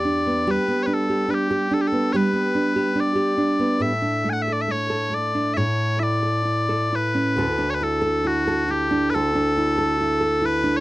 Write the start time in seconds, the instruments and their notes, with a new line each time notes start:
Already playing: nylon-string guitar E2 B3 G4, bagpipes D5
0.05 nylon-string guitar D4
0.27 nylon-string guitar B3
0.47 nylon-string guitar G3 G4, bagpipes B4
0.68 nylon-string guitar B3
0.83 bagpipes B4 C#5
0.87 nylon-string guitar D4
0.94 bagpipes A4
1.10 nylon-string guitar G4
1.28 nylon-string guitar D4, bagpipes B4
1.34 bagpipes G4
1.51 nylon-string guitar G4
1.71 nylon-string guitar D4, bagpipes A4
1.81 bagpipes G4
1.87 bagpipes A4
1.92 nylon-string guitar B3
2.13 nylon-string guitar G3 G4, bagpipes B4 C#5
2.33 nylon-string guitar B3
2.55 nylon-string guitar D4
2.76 nylon-string guitar G4
2.95 nylon-string guitar D4
3.00 bagpipes D5
3.15 nylon-string guitar G4
3.38 nylon-string guitar D4
3.59 nylon-string guitar B3
3.80 nylon-string guitar A2 A4, bagpipes E5
4.02 nylon-string guitar D4
4.24 nylon-string guitar A3
4.30 bagpipes F#5 G#5
4.42 bagpipes E5
4.48 nylon-string guitar A4
4.53 bagpipes D5
4.61 bagpipes E5
4.68 nylon-string guitar A3, bagpipes C#5
4.90 nylon-string guitar A4
5.11 nylon-string guitar A3, bagpipes D5
5.35 nylon-string guitar D4
5.54 nylon-string guitar A2 A4, bagpipes C#5 E5
6.00 nylon-string guitar E4, bagpipes D5 E5
6.23 nylon-string guitar A4
6.45 nylon-string guitar E4
6.69 nylon-string guitar A4
6.92 nylon-string guitar E4, bagpipes B4
7.15 nylon-string guitar C#4
7.37 nylon-string guitar D2 A4
7.58 nylon-string guitar D4
7.70 bagpipes C#5
7.75 bagpipes B4
7.81 nylon-string guitar E4, bagpipes A4
8.01 nylon-string guitar A4
8.24 nylon-string guitar E4, bagpipes F#4
8.47 nylon-string guitar A4
8.68 nylon-string guitar E4, bagpipes G4
8.91 nylon-string guitar D4
9.10 bagpipes B4
9.14 nylon-string guitar D2 A4, bagpipes A4
9.35 nylon-string guitar D4
9.57 nylon-string guitar E4
9.78 nylon-string guitar A4
10.01 nylon-string guitar E4
10.21 nylon-string guitar A4
10.42 nylon-string guitar E4, bagpipes B4
10.64 nylon-string guitar D4
10.77 bagpipes C#5